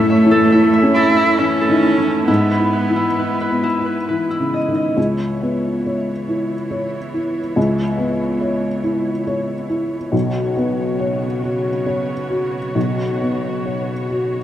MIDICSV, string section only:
0, 0, Header, 1, 2, 480
1, 0, Start_track
1, 0, Key_signature, 4, "minor"
1, 0, Tempo, 863309
1, 773, Tempo, 890208
1, 1255, Time_signature, 3, 2, 24, 8
1, 3173, Tempo, 859599
1, 6533, Tempo, 899550
1, 7908, End_track
2, 0, Start_track
2, 0, Title_t, "String section"
2, 0, Program_c, 0, 48
2, 0, Note_on_c, 0, 57, 68
2, 0, Note_on_c, 0, 64, 63
2, 0, Note_on_c, 0, 73, 52
2, 1253, Note_off_c, 0, 73, 0
2, 1256, Note_off_c, 0, 57, 0
2, 1260, Note_on_c, 0, 71, 44
2, 1264, Note_on_c, 0, 56, 47
2, 2683, Note_off_c, 0, 64, 0
2, 2694, Note_on_c, 0, 73, 31
2, 2696, Note_on_c, 0, 59, 30
2, 2699, Note_on_c, 0, 64, 33
2, 2706, Note_off_c, 0, 71, 0
2, 2708, Note_off_c, 0, 56, 0
2, 5544, Note_off_c, 0, 73, 0
2, 5545, Note_off_c, 0, 59, 0
2, 5547, Note_off_c, 0, 64, 0
2, 5563, Note_on_c, 0, 59, 45
2, 5563, Note_on_c, 0, 66, 46
2, 5567, Note_on_c, 0, 73, 49
2, 7908, Note_off_c, 0, 59, 0
2, 7908, Note_off_c, 0, 66, 0
2, 7908, Note_off_c, 0, 73, 0
2, 7908, End_track
0, 0, End_of_file